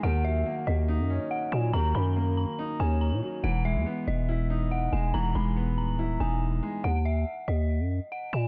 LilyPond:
<<
  \new Staff \with { instrumentName = "Synth bell" } { \time 4/4 \key ees \phrygian \tempo 4 = 141 ges''8 fes''4 ees''4. ges''8 aes''8 | bes''8 ces'''4 bes''4 aes''8 bes''8 r8 | ges''8 e''4 dis''4. ges''8 gis''8 | bes''8 b''4 bes''4 gis''4. |
ges''8 fes''4 ees''4. ges''8 aes''8 | }
  \new Staff \with { instrumentName = "Grand piano" } { \time 4/4 \key ees \phrygian ees8 ges8 bes4 ees'8 des'4 ges8 | ees8 ges8 bes4 ees'8 des'4 ges8 | e8 gis8 b4 e'8 dis'4 gis8 | e8 gis8 b4 e'8 dis'4 gis8 |
r1 | }
  \new Staff \with { instrumentName = "808-style bass" } { \clef bass \time 4/4 \key ees \phrygian ees,4 r8 ees,8. ges,8 r8. bes,8 | ees,8 ges,4~ ges,16 r8. ees,8. bes,16 r8 | e,,8. e,16 r8 e,,2 e,,8 | e,,8 e,,4 dis,,4 e,,4 r8 |
ees,4 r8 ees,8. ges,8 r8. bes,8 | }
>>